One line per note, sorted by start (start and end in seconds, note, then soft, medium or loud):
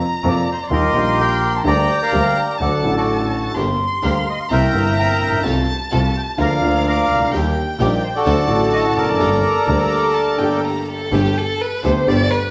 0.00 0.69 A#5 medium
0.24 0.44 F2 medium
0.24 0.43 C3 medium
0.24 0.44 F3 medium
0.24 0.44 A#3 medium
0.24 0.44 F4 medium
0.28 0.50 D5 medium
0.52 0.61 C5 medium
0.63 0.67 D5 medium
0.70 0.90 D#2 medium
0.70 0.90 D#3 medium
0.70 0.91 G3 medium
0.70 0.90 A#3 medium
0.70 0.91 F4 medium
0.70 1.62 G4 medium
0.70 1.19 A#4 medium
0.70 1.60 C6 medium
0.74 1.21 D#5 medium
0.92 1.61 A#1 medium
0.92 1.61 A#2 medium
0.92 1.60 D#3 medium
0.92 1.61 G3 medium
0.92 1.62 A#3 medium
0.96 1.62 F4 medium
1.20 1.63 A#4 medium
1.20 1.52 G5 medium
1.56 1.61 A5 medium
1.64 1.84 D2 medium
1.64 1.84 D3 medium
1.64 1.84 G3 medium
1.64 1.84 A#3 medium
1.64 1.85 G4 medium
1.64 2.01 D5 medium
1.64 2.48 G5 medium
1.64 2.60 A#5 medium
1.64 2.03 A#5 medium
2.02 2.57 A#4 medium
2.02 2.57 D5 medium
2.02 2.46 F5 medium
2.12 2.32 D2 medium
2.12 2.32 D3 medium
2.12 2.32 G3 medium
2.12 2.32 A#3 medium
2.12 2.32 G4 medium
2.49 2.54 G5 medium
2.58 2.80 D2 medium
2.58 2.80 D3 medium
2.58 2.80 F#3 medium
2.58 2.80 A3 medium
2.58 2.80 F#4 medium
2.58 2.96 A4 medium
2.58 2.95 D5 medium
2.58 2.94 F#5 medium
2.58 3.07 A5 medium
2.82 3.52 A1 medium
2.82 3.52 A2 medium
2.82 3.51 D3 medium
2.82 3.52 F#3 soft
2.82 3.52 A3 medium
2.86 3.53 F#4 medium
2.97 3.52 F#4 soft
2.97 3.52 A4 soft
2.97 3.29 D5 medium
3.07 3.56 A5 medium
3.55 3.75 G1 medium
3.55 3.76 G1 medium
3.55 3.75 G2 medium
3.55 3.75 D3 medium
3.55 3.75 G3 medium
3.55 3.76 A#3 medium
3.55 3.75 D4 medium
3.55 3.75 G4 medium
3.55 3.75 A#4 medium
3.55 4.50 C6 medium
4.02 4.23 D2 medium
4.02 4.23 D3 medium
4.02 4.23 G3 medium
4.02 4.23 A#3 soft
4.02 4.23 D4 medium
4.02 4.23 G4 medium
4.02 4.23 A#4 medium
4.02 4.28 F5 medium
4.30 4.39 D#5 medium
4.40 4.45 F5 medium
4.49 4.70 C2 medium
4.49 4.70 C3 medium
4.49 4.70 G3 medium
4.49 4.70 A#3 medium
4.49 4.70 C4 medium
4.49 4.70 E4 medium
4.49 4.70 A#4 medium
4.49 5.42 A#4 medium
4.49 4.98 E5 medium
4.49 4.95 G5 medium
4.49 5.45 A#5 medium
4.72 5.20 G1 medium
4.72 5.41 G1 medium
4.72 5.41 G2 medium
4.72 5.40 C3 medium
4.72 5.41 G3 medium
4.72 5.42 A#3 medium
4.72 5.41 C4 medium
4.72 5.41 E4 medium
4.72 5.42 E4 medium
4.72 5.41 A#4 medium
4.99 5.42 E5 medium
4.99 5.42 G5 medium
4.99 5.31 A#5 medium
5.20 5.44 A#1 medium
5.28 5.33 A1 soft
5.34 5.39 A#1 medium
5.39 5.45 B1 medium
5.43 5.64 C2 medium
5.43 5.64 C3 medium
5.43 5.64 G3 medium
5.43 5.64 A3 medium
5.43 5.64 F4 medium
5.43 5.65 F4 medium
5.43 5.64 G4 medium
5.43 5.65 A4 medium
5.43 6.39 A5 medium
5.91 6.12 C2 medium
5.91 6.12 C3 medium
5.91 6.12 G3 medium
5.91 6.12 A3 medium
5.91 6.11 F4 medium
5.91 6.12 F4 medium
5.91 6.11 G4 medium
5.91 6.11 A4 medium
5.91 6.14 A5 medium
6.17 6.22 G5 medium
6.29 6.34 A5 medium
6.37 6.58 D2 medium
6.37 6.58 D3 medium
6.37 6.58 F3 medium
6.37 6.58 A#3 medium
6.37 6.58 D4 medium
6.37 6.58 F4 medium
6.37 6.58 A#4 medium
6.37 7.33 F5 medium
6.37 6.87 A#5 medium
6.42 7.30 D5 medium
6.42 6.86 F5 medium
6.60 7.26 D2 medium
6.60 7.09 D2 medium
6.60 7.29 D3 medium
6.60 7.29 F3 medium
6.60 7.30 A#3 medium
6.60 7.29 D4 medium
6.60 7.29 F4 medium
6.60 7.30 F4 medium
6.60 7.29 A#4 medium
6.88 7.31 F5 medium
6.88 7.31 A#5 medium
6.88 7.20 D6 medium
7.09 7.32 C#2 medium
7.15 7.21 C2 soft
7.21 7.27 C#2 medium
7.27 7.33 D2 medium
7.32 7.53 D#2 medium
7.32 7.53 D#3 medium
7.32 7.53 G3 medium
7.32 7.53 A#3 medium
7.32 7.52 D#4 medium
7.32 7.52 G4 medium
7.32 7.53 G4 medium
7.32 7.52 A#4 medium
7.32 8.25 G5 medium
7.79 7.99 A#1 medium
7.79 8.00 A#1 medium
7.79 8.00 A#2 medium
7.79 7.99 D#3 medium
7.79 7.99 G3 medium
7.79 8.00 A#3 medium
7.79 7.99 D#4 medium
7.79 7.99 G4 medium
7.79 8.00 G4 medium
7.79 7.99 A#4 medium
7.79 8.02 D5 medium
8.04 8.09 C5 medium
8.15 9.06 F#4 medium
8.15 8.97 A4 medium
8.15 8.76 D5 medium
8.25 8.46 D2 medium
8.25 8.45 D3 medium
8.25 8.46 F#3 medium
8.25 8.46 A3 medium
8.25 8.46 D4 medium
8.25 8.46 F#4 medium
8.25 8.46 A4 medium
8.25 9.21 A5 medium
8.46 9.16 A1 medium
8.46 8.96 A1 medium
8.46 9.16 A2 medium
8.46 9.15 D3 medium
8.46 9.16 F#3 medium
8.46 9.17 A3 medium
8.46 9.17 D4 medium
8.46 9.17 F#4 medium
8.46 9.17 A4 medium
8.73 8.84 D#5 loud
8.96 9.19 F1 medium
8.96 10.61 A4 medium
8.96 10.61 A#4 medium
8.96 10.60 D5 medium
9.02 9.08 E2 soft
9.09 9.15 F2 medium
9.14 9.21 F#2 medium
9.20 9.40 G1 medium
9.20 9.40 G2 medium
9.20 9.40 D3 medium
9.20 9.40 A3 medium
9.20 9.40 A#3 medium
9.20 9.40 G4 medium
9.20 9.40 A4 medium
9.20 10.15 A#5 medium
9.66 9.88 D2 medium
9.66 10.36 D2 medium
9.66 9.68 D3 medium
9.66 10.35 D3 medium
9.66 10.36 G3 soft
9.66 10.37 A#3 medium
9.66 10.36 G4 medium
9.66 10.36 A4 medium
9.71 10.38 G4 medium
10.14 10.40 A5 medium
10.37 11.09 G1 medium
10.37 11.09 G2 medium
10.37 11.08 D3 medium
10.37 11.08 A3 soft
10.37 11.09 A#3 medium
10.37 11.09 G4 medium
10.37 11.09 A4 medium
10.37 10.66 G5 medium
10.41 11.10 G4 medium
10.65 10.89 A#5 medium
10.91 11.16 A4 medium
11.12 11.32 G1 medium
11.12 11.32 G2 medium
11.12 11.32 D3 medium
11.12 11.32 A3 medium
11.12 11.33 B3 medium
11.12 11.33 G4 medium
11.12 11.39 G4 medium
11.12 11.33 A4 medium
11.38 11.62 A4 medium
11.61 11.84 B4 medium
11.84 12.04 D2 medium
11.84 12.05 D3 medium
11.84 12.04 A3 medium
11.84 12.04 B3 medium
11.84 12.04 G4 medium
11.84 12.04 A4 medium
11.84 12.10 C5 medium
12.07 12.28 G1 medium
12.07 12.28 G2 medium
12.07 12.27 D3 medium
12.07 12.28 A3 medium
12.07 12.28 B3 medium
12.07 12.28 G4 medium
12.07 12.28 A4 medium
12.07 12.32 D5 loud
12.31 12.51 B4 medium